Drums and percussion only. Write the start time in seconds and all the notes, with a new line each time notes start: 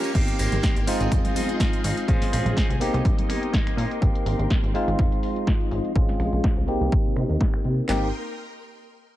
0.03 closed hi-hat, tambourine
0.15 kick, closed hi-hat, tambourine, crash, high conga
0.28 closed hi-hat, tambourine
0.39 open hi-hat, tambourine
0.52 closed hi-hat, tambourine, low conga
0.62 kick, snare, closed hi-hat, tambourine
0.76 closed hi-hat, tambourine, high conga
0.87 open hi-hat, tambourine
1.00 closed hi-hat, tambourine
1.12 finger snap, kick, closed hi-hat, tambourine
1.25 closed hi-hat, tambourine, low conga
1.36 open hi-hat, tambourine, high conga
1.49 closed hi-hat, tambourine
1.60 kick, snare, closed hi-hat, tambourine, low conga
1.73 closed hi-hat, tambourine
1.84 open hi-hat, tambourine
1.97 closed hi-hat, tambourine
2.08 kick, closed hi-hat, tambourine, high conga
2.21 snare, open hi-hat, tambourine
2.33 finger snap, open hi-hat, tambourine
2.46 closed hi-hat, tambourine, low conga
2.57 kick, snare, closed hi-hat
2.70 closed hi-hat, tambourine, high conga
2.81 open hi-hat, tambourine
2.93 closed hi-hat, tambourine
3.05 kick, closed hi-hat
3.18 closed hi-hat, tambourine, low conga
3.29 finger snap, open hi-hat, tambourine, high conga
3.42 closed hi-hat, tambourine
3.53 kick, snare, closed hi-hat, tambourine, low conga
3.67 finger snap, closed hi-hat, tambourine
3.78 open hi-hat, tambourine
3.90 closed hi-hat, tambourine
4.02 kick, closed hi-hat
4.15 closed hi-hat
4.26 open hi-hat
4.39 closed hi-hat
4.50 kick, snare, closed hi-hat
4.64 closed hi-hat
4.75 open hi-hat
4.88 closed hi-hat
4.99 finger snap, kick, closed hi-hat
5.12 closed hi-hat
5.23 open hi-hat
5.36 closed hi-hat
5.47 kick, snare, closed hi-hat
5.61 closed hi-hat
5.71 open hi-hat
5.85 closed hi-hat
5.96 kick, closed hi-hat
6.09 snare, open hi-hat
6.20 finger snap, open hi-hat
6.33 closed hi-hat
6.44 kick, snare, closed hi-hat
6.57 closed hi-hat
6.68 open hi-hat
6.81 closed hi-hat
6.92 kick
7.05 closed hi-hat
7.17 finger snap, open hi-hat
7.30 closed hi-hat
7.41 kick, snare
7.54 finger snap
7.65 open hi-hat
7.78 closed hi-hat
7.89 snare, clap